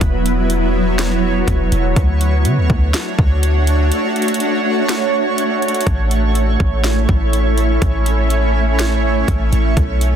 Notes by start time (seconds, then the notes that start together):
Already playing: F#3 B3 E4
0.01 E1 C#5, kick, closed hi-hat
0.26 closed hi-hat
0.50 closed hi-hat
0.99 snare, closed hi-hat
1.48 E1, kick, closed hi-hat
1.72 E1, closed hi-hat
1.96 D2 A3 D4 F#4 C#5, kick, closed hi-hat
2.21 closed hi-hat
2.45 D3, closed hi-hat
2.57 D2
2.70 D2, kick
2.94 snare, closed hi-hat
3.19 D2, kick
3.43 closed hi-hat
3.67 closed hi-hat
3.92 closed hi-hat
4.16 closed hi-hat
4.22 closed hi-hat
4.28 closed hi-hat
4.34 closed hi-hat
4.40 closed hi-hat
4.89 snare, closed hi-hat
5.38 closed hi-hat
5.62 closed hi-hat
5.68 closed hi-hat
5.75 closed hi-hat
5.81 closed hi-hat
5.87 A1 C#4 E4, kick, closed hi-hat
6.11 closed hi-hat
6.35 closed hi-hat
6.60 A1, kick
6.84 snare, closed hi-hat
7.09 A1, kick
7.33 closed hi-hat
7.58 closed hi-hat
7.82 A1, kick, closed hi-hat
8.06 closed hi-hat
8.30 closed hi-hat
8.79 snare, closed hi-hat
9.28 A1, kick, closed hi-hat
9.52 A1, closed hi-hat
9.77 B1 D4 F#4 B4, kick, closed hi-hat
10.01 closed hi-hat